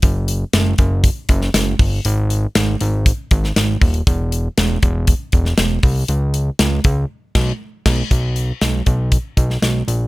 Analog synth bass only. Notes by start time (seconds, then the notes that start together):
0.03 F#1
0.54 F#1
0.79 F#1
1.29 F#1
1.54 F#1
1.79 G1
2.05 G#1
2.55 G#1
2.81 G#1
3.31 G#1
3.56 G#1
3.81 D#1
4.07 E1
4.58 E1
4.83 E1
5.33 E1
5.58 E1
5.83 C2
6.09 C#2
6.59 C#2
6.85 C#2
7.35 B1
7.86 B1
8.11 B1
8.62 B1
8.86 B1
9.37 B1
9.62 B1
9.88 A#1